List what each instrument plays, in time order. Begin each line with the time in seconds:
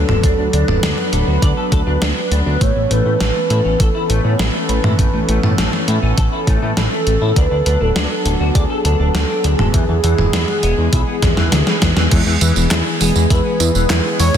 Already playing: analog synth pad F#3 B3 D4 A4, soft synth lead A4
0.09 analog synth bass D1, clean electric guitar A4, mid tom
0.23 analog synth bass D2, clean electric guitar D4, analog synth pad B4, kick, closed hi-hat
0.38 analog synth bass D2, clean electric guitar D4
0.53 analog synth bass D2, clean electric guitar D4, closed hi-hat
0.68 analog synth bass D1, clean electric guitar D4, mid tom
0.83 analog synth bass D2, clean electric guitar D5, snare, closed hi-hat
0.98 clean electric guitar D4, snare
1.13 analog synth bass D1, clean electric guitar A4, closed hi-hat
1.27 analog synth bass D2, clean electric guitar F#4
1.42 analog synth bass D2, clean electric guitar D5, kick, closed hi-hat
1.57 clean electric guitar A4
1.72 analog synth bass D2, clean electric guitar A4, kick, closed hi-hat
1.87 analog synth bass D2, clean electric guitar D4
2.01 analog synth bass D2, clean electric guitar D4, soft synth lead B4, snare, closed hi-hat
2.17 clean electric guitar D4
2.31 analog synth bass D2, clean electric guitar D4, closed hi-hat
2.46 analog synth bass D2, clean electric guitar D4
2.61 analog synth bass A1, analog synth pad E3 C#4 A4, clean electric guitar A3, soft synth lead C#5, kick, closed hi-hat
2.76 analog synth bass A1, clean electric guitar A3
2.90 analog synth bass A1, clean electric guitar A3, soft synth lead B4, closed hi-hat
3.06 analog synth bass A2, clean electric guitar A3
3.20 analog synth bass A1, clean electric guitar A4, snare, closed hi-hat
3.35 clean electric guitar A3
3.50 analog synth bass A2, clean electric guitar E4, closed hi-hat
3.65 analog synth bass A1, clean electric guitar C#4
3.80 analog synth bass A1, soft synth lead A4, clean electric guitar A4, kick, closed hi-hat
3.95 clean electric guitar E4
4.09 analog synth bass A1, clean electric guitar A3, soft synth lead C#5, closed hi-hat
4.24 analog synth bass A2, clean electric guitar A3
4.39 analog synth bass A1, clean electric guitar E4, soft synth lead B4, snare, closed hi-hat
4.54 clean electric guitar A3
4.69 analog synth bass A1, clean electric guitar A3, soft synth lead B4, closed hi-hat
4.84 analog synth bass A2, clean electric guitar E4, mid tom
4.99 analog synth bass A1, clean electric guitar A3, kick, closed hi-hat
5.13 analog synth bass A1, clean electric guitar A3
5.28 analog synth bass A1, clean electric guitar A3, closed hi-hat
5.43 analog synth bass A2, clean electric guitar A3, mid tom
5.58 analog synth bass A1, clean electric guitar A4, snare, closed hi-hat
5.73 clean electric guitar A3, snare
5.88 analog synth bass A2, clean electric guitar E4, closed hi-hat
6.03 analog synth bass A1, clean electric guitar C#4
6.17 analog synth bass A1, clean electric guitar A4, kick, closed hi-hat
6.32 clean electric guitar E4
6.47 analog synth bass A1, clean electric guitar A3, kick, closed hi-hat
6.62 analog synth bass A2, clean electric guitar A3
6.77 analog synth bass A1, clean electric guitar E4, soft synth lead A4, snare, closed hi-hat
6.92 clean electric guitar A3
7.07 analog synth bass A1, clean electric guitar A3, closed hi-hat
7.21 analog synth bass A2, clean electric guitar E4
7.36 analog synth bass D2, analog synth pad F#3 B3 D4, clean electric guitar D4, soft synth lead B4, kick, closed hi-hat
7.51 analog synth bass D2, clean electric guitar D4
7.66 analog synth bass D2, clean electric guitar D4, soft synth lead B4, closed hi-hat
7.81 analog synth bass D1, clean electric guitar D4, soft synth lead A4
7.96 analog synth bass D2, clean electric guitar D5, snare, closed hi-hat
8.11 clean electric guitar D4
8.25 analog synth bass D1, soft synth lead F#4, clean electric guitar A4, closed hi-hat
8.40 analog synth bass D2, clean electric guitar F#4
8.55 analog synth bass D2, soft synth lead G#4, clean electric guitar D5, kick, closed hi-hat
8.70 clean electric guitar A4
8.85 analog synth bass D2, clean electric guitar D4, soft synth lead A4, closed hi-hat
8.99 analog synth bass D1, clean electric guitar D4
9.14 analog synth bass D2, clean electric guitar A4, snare, closed hi-hat
9.29 clean electric guitar D4
9.44 analog synth bass D2, clean electric guitar D4, soft synth lead G#4, closed hi-hat
9.59 analog synth bass D1, clean electric guitar A4, mid tom
9.74 analog synth bass E2, analog synth pad E3 G#3 G#4, clean electric guitar E3, kick, closed hi-hat
9.89 analog synth bass E2, clean electric guitar E3
10.04 analog synth bass E2, clean electric guitar E3, closed hi-hat
10.18 analog synth bass E1, clean electric guitar E3, mid tom
10.33 analog synth bass E2, clean electric guitar E4, snare, closed hi-hat
10.48 clean electric guitar E3, snare
10.63 analog synth bass E1, clean electric guitar B3, closed hi-hat
10.78 analog synth bass E2, clean electric guitar G#3
10.93 analog synth bass B1, clean electric guitar E4, kick, closed hi-hat
11.08 clean electric guitar B3
11.22 analog synth bass E2, clean electric guitar G#3, kick, snare, closed hi-hat, mid tom
11.37 analog synth bass E2, clean electric guitar E3, snare
11.52 analog synth bass D2, clean electric guitar E3, snare, closed hi-hat
11.67 clean electric guitar B3, snare
11.82 analog synth bass E2, clean electric guitar E3, kick, snare, closed hi-hat
11.97 analog synth bass E2, clean electric guitar E3, snare
12.11 analog synth bass E2, clean electric guitar E3, analog synth pad E3 G#3 B3 G#4, synth arpeggio sound G#3, kick, closed hi-hat, tambourine, crash
12.26 analog synth bass E2, clean electric guitar E3
12.41 analog synth bass E2, clean electric guitar E3, closed hi-hat, tambourine
12.56 analog synth bass E1, clean electric guitar E3, tambourine
12.71 analog synth bass E2, synth arpeggio sound E4, clean electric guitar E4, snare, clap, closed hi-hat, tambourine
12.86 clean electric guitar E3
13.01 analog synth bass E1, synth arpeggio sound G#3, clean electric guitar B3, soft synth lead G#4, open hi-hat, tambourine
13.15 analog synth bass E2, clean electric guitar G#3, tambourine
13.30 analog synth bass E2, synth arpeggio sound G#3, clean electric guitar E4, soft synth lead B4, kick, closed hi-hat, tambourine
13.45 clean electric guitar B3
13.60 analog synth bass E2, clean electric guitar E3, closed hi-hat, tambourine
13.75 analog synth bass E1, clean electric guitar E3, tambourine
13.90 analog synth bass E2, clean electric guitar B3, synth arpeggio sound E4, snare, clap, closed hi-hat, tambourine
14.05 clean electric guitar E3
14.19 analog synth bass E2, clean electric guitar E3, synth arpeggio sound G#3, soft synth lead C#5, open hi-hat, tambourine
14.34 clean electric guitar B3